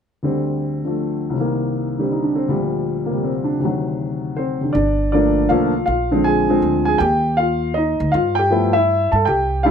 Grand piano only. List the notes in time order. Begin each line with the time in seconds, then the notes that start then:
0.23 D2 D3 G3 C4
0.85 D3 F3 A3
1.30 C2
1.34 C3 D#3
1.40 A#3
1.98 D3 G3 C4 G4
2.12 D#4
2.23 D4
2.36 C4
2.48 D2 A#2 F3 G3
3.06 A#3
3.10 C3 G3
3.24 C4
3.44 D4
3.60 D2 C3
3.64 D#3 F#3
4.37 C4 C5
4.61 C3 D3
4.73 D4 D5
5.12 D3 F3 A3 A#3 D4 D5
5.49 D3 F3 A3 A#3 F4 F5
5.86 F4 F5
6.11 D3 F3 G#3 C4
6.24 G#4 G#5
6.49 D3 F3 G#3 C4
6.85 G#4 G#5
6.98 G4 G5
7.37 F4 F5
7.74 D#4 D#5
8.12 F4 F5
8.35 G5
8.39 G4
8.50 F3 A3 B3 E4
8.73 E4 E5
9.12 A4 A5
9.25 G4 G5
9.63 G3 A3 D4 E4 F4 F5